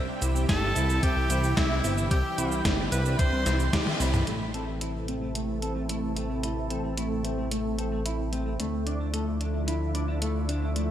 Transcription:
Already playing: analog synth pad C3 E3 G3 E4 G4, clean electric guitar C4
0.22 analog synth bass C2, clean electric guitar E4 C5, closed hi-hat, shaker
0.35 clean electric guitar C4, shaker
0.49 analog synth bass G1, clean electric guitar G4, tenor saxophone A4, string machine A5, kick, snare, closed hi-hat, shaker
0.75 analog synth bass C2, clean electric guitar C4 E4, closed hi-hat, shaker
0.89 clean electric guitar C4, shaker
1.03 analog synth bass C2, clean electric guitar C4, tenor saxophone G4, string machine G5, kick, closed hi-hat, shaker
1.16 analog synth bass C2
1.30 analog synth bass C2, clean electric guitar E4 C5, closed hi-hat, shaker
1.43 clean electric guitar C4, shaker
1.57 analog synth bass C2, clean electric guitar C4 G4, tenor saxophone E4, string machine E5, kick, snare, closed hi-hat, shaker
1.84 analog synth bass G1, clean electric guitar C4 E4, open hi-hat, shaker
1.97 clean electric guitar C4, shaker
2.11 analog synth bass C2, clean electric guitar C4 G4, analog synth pad D4, tenor saxophone G4, string machine G5, kick, closed hi-hat, shaker
2.38 analog synth bass C2, clean electric guitar E4 C5, closed hi-hat, shaker
2.51 clean electric guitar C4, shaker
2.65 analog synth bass G1, clean electric guitar C4 G4, kick, snare, closed hi-hat, shaker
2.92 analog synth bass C2, clean electric guitar C4 E4, tenor saxophone B4, string machine B5, closed hi-hat, shaker
3.05 clean electric guitar C4, shaker
3.19 analog synth bass C2, clean electric guitar C4, tenor saxophone C5, string machine C6, kick, closed hi-hat, shaker
3.33 analog synth bass C2
3.46 analog synth bass C2, clean electric guitar E4 C5, snare, closed hi-hat, shaker
3.60 clean electric guitar C4, shaker
3.73 analog synth bass C2, clean electric guitar G4, kick, snare, closed hi-hat, high tom, shaker
3.87 high tom
4.00 analog synth bass C2, clean electric guitar C4 E4, open hi-hat, shaker
4.13 clean electric guitar C4, mid tom, shaker
4.27 analog synth bass A1, analog synth pad C3 E3 A3 E4 A4, clean electric guitar A3, closed hi-hat
4.54 clean electric guitar C4 A4, closed hi-hat
4.68 clean electric guitar A3
4.81 clean electric guitar E4, closed hi-hat
5.08 clean electric guitar A3 C4, closed hi-hat
5.22 clean electric guitar A3
5.35 clean electric guitar A3, closed hi-hat
5.62 clean electric guitar C4 A4, closed hi-hat
5.76 clean electric guitar A3
5.89 clean electric guitar A3 E4, closed hi-hat
6.16 clean electric guitar A3 C4, closed hi-hat
6.30 clean electric guitar A3
6.43 clean electric guitar A3 E4, closed hi-hat
6.70 clean electric guitar C4 A4, closed hi-hat
6.84 clean electric guitar A3
6.97 clean electric guitar A3 E4, closed hi-hat
7.24 clean electric guitar A3 C4, closed hi-hat
7.38 clean electric guitar A3
7.51 clean electric guitar A3, closed hi-hat
7.78 clean electric guitar C4 A4, closed hi-hat
7.92 clean electric guitar A3
8.06 clean electric guitar E4, closed hi-hat
8.32 clean electric guitar A3 C4, closed hi-hat
8.46 clean electric guitar A3
8.59 analog synth bass D2, analog synth pad D3 F3 E4, clean electric guitar A3 D4, closed hi-hat
8.87 clean electric guitar D4 D5, closed hi-hat
9.00 clean electric guitar D4
9.13 clean electric guitar A3 A4, closed hi-hat
9.41 clean electric guitar D4, closed hi-hat
9.54 clean electric guitar D4
9.67 clean electric guitar D4 E4, closed hi-hat
9.95 clean electric guitar D4 D5, closed hi-hat
10.08 clean electric guitar D4
10.21 clean electric guitar A3 A4, closed hi-hat
10.49 clean electric guitar D4, closed hi-hat
10.62 clean electric guitar D4
10.76 clean electric guitar A3 D4, closed hi-hat

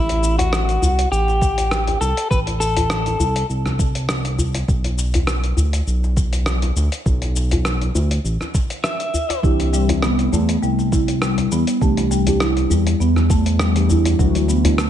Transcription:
Already playing: analog synth bass A1, electric slide guitar E4
0.09 closed hi-hat, djembe tone, shaker
0.23 djembe slap, shaker
0.39 electric slide guitar F#4, closed hi-hat, djembe bass, shaker
0.53 cross-stick, shaker
0.69 closed hi-hat, shaker
0.82 analog synth bass C2, djembe bass, shaker
0.99 closed hi-hat, djembe slap, shaker
1.12 analog synth bass A1, electric slide guitar G4, shaker
1.28 djembe slap, shaker
1.41 kick, djembe slap, shaker
1.58 closed hi-hat, djembe tone, shaker
1.71 cross-stick, shaker
1.87 closed hi-hat, djembe tone, shaker
2.01 analog synth bass C2, electric slide guitar A4, djembe slap, shaker
2.17 closed hi-hat, shaker
2.31 analog synth bass A1, electric slide guitar B4, kick, djembe tone, shaker
2.47 closed hi-hat, djembe tone, shaker
2.60 electric slide guitar A4, djembe slap, shaker
2.77 closed hi-hat, djembe bass, shaker
2.90 cross-stick, shaker
3.06 closed hi-hat, djembe tone, shaker
3.20 analog synth bass C2, djembe bass, shaker
3.36 closed hi-hat, djembe slap, shaker
3.49 analog synth bass C2, shaker
3.66 cross-stick, djembe tone, shaker
3.79 kick, djembe slap, shaker
3.95 closed hi-hat, shaker
4.09 cross-stick, shaker
4.25 closed hi-hat, shaker
4.38 djembe bass, shaker
4.55 closed hi-hat, djembe slap, djembe tone, shaker
4.68 analog synth bass B1, kick, djembe tone, shaker
4.84 closed hi-hat, djembe tone, shaker
4.98 djembe slap, shaker
5.14 closed hi-hat, djembe bass, shaker
5.27 cross-stick, shaker
5.44 closed hi-hat, shaker
5.57 analog synth bass D2, djembe bass, shaker
5.73 closed hi-hat, djembe slap, shaker
5.87 analog synth bass B1, shaker
6.04 djembe slap, shaker
6.16 kick, djembe slap, shaker
6.33 closed hi-hat, djembe tone, shaker
6.46 cross-stick, shaker
6.62 closed hi-hat, djembe tone, shaker
6.76 analog synth bass D2, djembe slap, shaker
6.92 closed hi-hat, shaker
7.06 analog synth bass B1, kick, djembe tone, shaker
7.22 closed hi-hat, djembe tone, shaker
7.36 djembe slap, shaker
7.51 closed hi-hat, djembe bass, shaker
7.65 cross-stick, shaker
7.82 closed hi-hat, djembe tone, shaker
7.95 analog synth bass D2, djembe bass, shaker
8.11 closed hi-hat, djembe slap, shaker
8.24 analog synth bass A1, shaker
8.41 cross-stick, djembe tone, shaker
8.54 kick, djembe slap, shaker
8.70 closed hi-hat, shaker
8.84 electric slide guitar E5, cross-stick, shaker
9.00 closed hi-hat, shaker
9.14 djembe bass, shaker
9.30 closed hi-hat, djembe slap, djembe tone, shaker
9.42 analog synth bass C2, synth keys E3 C4 D4 G4, marimba E4, kick, djembe tone, shaker
9.60 closed hi-hat, djembe tone, shaker
9.73 marimba G3, djembe slap, shaker
9.88 synth keys E3 C4 D4 E4, closed hi-hat, djembe bass, shaker
10.02 marimba B3, cross-stick, shaker
10.19 closed hi-hat, shaker
10.33 analog synth bass E2, marimba A3, djembe bass, shaker
10.49 closed hi-hat, djembe slap, shaker
10.63 analog synth bass C2, marimba G3, shaker
10.79 djembe slap, shaker
10.92 marimba E4, kick, djembe slap, shaker
11.08 closed hi-hat, djembe tone, shaker
11.22 marimba G3, cross-stick, shaker
11.38 closed hi-hat, djembe tone, shaker
11.51 analog synth bass E2, marimba B3, djembe slap, shaker
11.67 closed hi-hat, shaker
11.80 analog synth bass C2, synth keys E3 D4 G4, marimba A3, kick, djembe tone, shaker
11.97 closed hi-hat, djembe tone, shaker
12.11 marimba G3, djembe slap, shaker
12.26 synth keys E3 C4 D4 G4, closed hi-hat, djembe bass, shaker
12.40 marimba E4, cross-stick, shaker
12.57 closed hi-hat, djembe tone, shaker
12.70 analog synth bass E2, marimba G3, djembe bass, shaker
12.87 closed hi-hat, djembe slap, shaker
13.00 analog synth bass E2, marimba B3, shaker
13.16 cross-stick, djembe tone, shaker
13.30 marimba A3, kick, djembe slap, shaker
13.46 closed hi-hat, shaker
13.59 marimba G3, cross-stick, shaker
13.75 synth keys E3 D4 G4, closed hi-hat, shaker
13.90 marimba E4, djembe bass, shaker
14.05 closed hi-hat, djembe slap, djembe tone, shaker
14.18 analog synth bass D2, synth keys E3 A3 D4 F#4, marimba F#3, kick, djembe tone, shaker
14.35 closed hi-hat, djembe tone, shaker
14.48 marimba B3, djembe slap, shaker
14.64 synth keys E3 A3 D4 E4, closed hi-hat, djembe bass, shaker
14.78 marimba A3, cross-stick, shaker

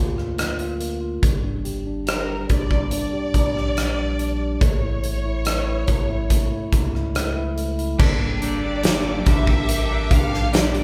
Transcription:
Already playing: sub bass D2, tine electric piano A#3 F4, violin section C5
0.17 tine electric piano F4, cross-stick
0.38 tine electric piano A#3, cross-stick, closed hi-hat
0.59 tine electric piano F4, closed hi-hat
0.80 tine electric piano A#3, closed hi-hat
1.01 tine electric piano F4
1.22 sub bass G1, tine electric piano G3, kick, closed hi-hat
1.44 tine electric piano D4
1.65 tine electric piano G4, closed hi-hat
1.87 tine electric piano D4
2.07 tine electric piano G4, violin section A#4, cross-stick, closed hi-hat
2.29 tine electric piano G3
2.49 sub bass G1, tine electric piano D4, violin section D5, kick, closed hi-hat
2.71 tine electric piano G3, kick
2.91 tine electric piano D4, violin section D5, closed hi-hat
3.13 tine electric piano G4
3.34 sub bass A#1, tine electric piano D4, kick, closed hi-hat
3.55 tine electric piano G4, cross-stick
3.77 tine electric piano D4, cross-stick, closed hi-hat
3.98 tine electric piano G3
4.19 tine electric piano D4, closed hi-hat
4.40 tine electric piano G3
4.61 sub bass A1, tine electric piano A3, violin section C#5, kick, closed hi-hat
4.83 tine electric piano E4
5.03 tine electric piano A3, closed hi-hat
5.25 tine electric piano E4
5.45 tine electric piano A3, cross-stick, closed hi-hat
5.67 tine electric piano E4
5.87 sub bass A1, tine electric piano A3, kick, closed hi-hat
6.10 tine electric piano E4
6.30 tine electric piano A3, kick, closed hi-hat
6.52 tine electric piano E4
6.72 sub bass C#2, tine electric piano A3, kick, closed hi-hat
6.94 tine electric piano E4, cross-stick
7.15 tine electric piano A3, cross-stick, closed hi-hat
7.36 tine electric piano E4
7.57 tine electric piano A3, closed hi-hat
7.78 tine electric piano E4, closed hi-hat
7.99 sub bass G1, clean electric guitar G3 A#3 D4 G4 A4, tine electric piano G3, string section A#3 G5 A5 D6, kick, crash
8.41 clean electric guitar A#3 D4 G4 A4, tine electric piano D4, violin section D5, closed hi-hat
8.62 clean electric guitar D4 G4 A4
8.83 clean electric guitar G3 A#3 D4 G4 A4, tine electric piano G4, snare, closed hi-hat, tambourine
9.25 sub bass A1, clean electric guitar A#3 D4 G4 A4, tine electric piano D4, violin section E5, kick, closed hi-hat
9.47 clean electric guitar D4 G4 A4, kick
9.69 tine electric piano A#4, closed hi-hat
9.89 clean electric guitar D4 G4 A4
10.10 sub bass A#1, clean electric guitar A#3 D4 G4 A4, tine electric piano D4, violin section F5, kick, closed hi-hat
10.34 snare
10.52 clean electric guitar G3 A#3 D4 G4 A4, tine electric piano G4, violin section D5, snare, closed hi-hat, tambourine
10.74 closed hi-hat

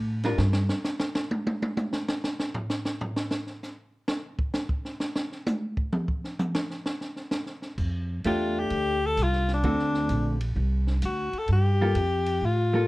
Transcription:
Already playing: upright bass A2
0.24 hollow-body jazz guitar G3 D4 F4 A#4, snare, ride
0.38 upright bass G2, snare
0.53 snare
0.69 snare
0.84 snare, hi-hat pedal
1.00 snare
1.15 snare
1.31 high tom
1.47 high tom
1.62 high tom
1.77 hi-hat pedal, high tom
1.93 snare
2.08 snare
2.24 snare
2.40 snare
2.54 floor tom
2.70 snare, hi-hat pedal
2.85 snare
3.01 floor tom
3.16 snare
3.31 snare
3.47 snare
3.63 snare, hi-hat pedal
4.08 snare
4.39 kick
4.54 snare, hi-hat pedal
4.69 kick
4.85 snare
5.00 snare
5.16 snare
5.32 snare
5.46 hi-hat pedal, high tom
5.77 kick
5.93 mid tom
6.08 kick
6.24 snare
6.39 hi-hat pedal, mid tom
6.55 snare
6.71 snare
6.86 snare
7.01 snare
7.16 snare
7.31 snare, hi-hat pedal
7.46 snare
7.62 snare
7.78 upright bass F2, kick, crash
8.24 upright bass E2, hollow-body jazz guitar A3 D4 G4, alto saxophone F4, kick, hi-hat pedal, ride
8.59 alto saxophone G4
8.70 upright bass D2, kick, ride
9.06 alto saxophone A4
9.17 upright bass C2, kick, hi-hat pedal, ride
9.23 alto saxophone F4
9.33 snare
9.48 snare, ride
9.54 alto saxophone D4
9.63 upright bass D2, hollow-body jazz guitar D3 A3 C4 F#4, kick, ride
9.79 snare
9.94 snare
10.09 upright bass A#1, kick, hi-hat pedal, ride
10.41 ride
10.56 upright bass C2, kick
10.87 snare
11.02 upright bass D2, alto saxophone F#4, kick, hi-hat pedal, ride
11.33 muted upright bass stroke, ride
11.38 alto saxophone A4
11.48 upright bass G2, kick, ride
11.52 alto saxophone G4
11.81 hollow-body jazz guitar G3 A#3 F4 A4
11.95 upright bass F2, kick, hi-hat pedal, ride
12.26 ride
12.41 upright bass A2, kick
12.45 alto saxophone F4
12.73 hollow-body jazz guitar G3 A#3 F4 A4

